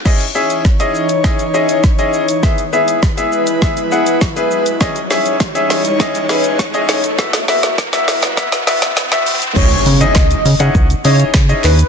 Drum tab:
CC |x---------------|----------------|----------------|----------------|
HH |-x-x-x-x-x-x-x-x|-x-x-x-x-x-x-x-x|-xox-xox-xox-xox|-xox-xox-xox-xox|
SH |xxxxxxxxxxxxxxxx|xxxxxxxxxxxxxxxx|xxxxxxxxxxxxxxxx|xxxxxxxxxxxxxxxx|
CP |----------------|----------------|----------------|----------------|
SD |o---o---o---o---|o---o---o---o---|o-o-o-o-o-o-o-o-|oooooooooooooo--|
BD |o---o---o---o---|o---o---o---o---|o---o---o---o---|o---o---o-------|

CC |x---------------|
HH |-xox-xox-xox-xox|
SH |xxxxxxxxxxxxxxxx|
CP |----x-------x-x-|
SD |----o-------o---|
BD |o---o---o---o---|